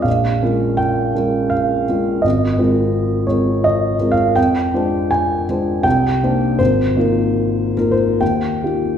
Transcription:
\new Staff \with { instrumentName = "Grand piano" } { \time 3/4 \key aes \major \tempo 4 = 81 << { f''4 g''4 f''4 | ees''4. des''8 \tuplet 3/2 { ees''4 f''8 } | g''4 aes''4 g''4 | c''4~ \tuplet 3/2 { c''8. bes'16 c''8 } g''4 | } \\ { bes,,8 <aes des' f' bes'>4 <aes des' f' bes'>4 <aes des' f' bes'>8 | aes,,8 <aes c' f' bes'>4 <aes c' f' bes'>4 <aes c' f' bes'>8 | f,8 <aes d' f' c''>4 <aes d' f' c''>8 c,8 <bes d' ees' c''>8 | aes,,8 <bes ees' f' bes'>4 <bes ees' f'>8 ees,8 <bes ees' f' g'>8 | } >> }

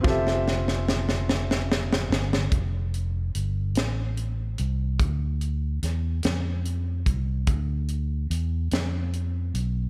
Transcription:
<<
  \new Staff \with { instrumentName = "Grand piano" } { \time 6/8 \key f \major \tempo 4. = 48 <c' f' g' a' e''>2. | r2. | r2. | r2. | }
  \new Staff \with { instrumentName = "Fingered electric bass" } { \clef bass \time 6/8 \key f \major f,,2~ f,,8 g,,8 | f,,4 g,,8 a,,4 c,8 | d,4 e,8 f,4 c,8 | d,4 e,8 f,4 b,,8 | }
  \new DrumStaff \with { instrumentName = "Drums" } \drummode { \time 6/8 <bd sn>16 sn16 sn16 sn16 sn16 sn16 sn16 sn16 sn16 sn16 sn16 sn16 | <hh bd>8 hh8 hh8 <hh sn>8 hh8 hh8 | <hh bd>8 hh8 <hh sn>8 <hh sn>8 hh8 <hh bd>8 | <hh bd>8 hh8 hh8 <hh sn>8 hh8 hh8 | }
>>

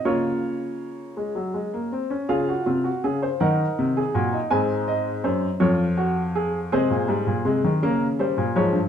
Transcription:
<<
  \new Staff \with { instrumentName = "Grand piano" } { \time 6/8 \key des \major \tempo 4. = 54 << { des''2~ des''8 r8 | f''4. ges''4. | aes''8 ees''8 c''8 des''4. | c''4. bes'8 c''8 des''8 | } \\ { f'2~ f'8 r8 | aes'16 ges'16 f'16 ges'16 aes'16 c''16 bes'8. aes'16 ges'16 ees'16~ | ees'4. f'8 ges'8 aes'8 | aes'2. | } >> }
  \new Staff \with { instrumentName = "Grand piano" } { \clef bass \time 6/8 \key des \major << { bes4. aes16 ges16 aes16 bes16 c'16 des'16 | f'4. ees'4. | c'2. | aes8 g8 aes8 bes8 g8 f8 | } \\ { des2~ des8 r8 | des8 c8 des8 ees8 c8 bes,8 | aes,4 ges,8 f,4. | c16 bes,16 aes,16 bes,16 c16 ees16 des8. bes,16 aes,16 g,16 | } >> }
>>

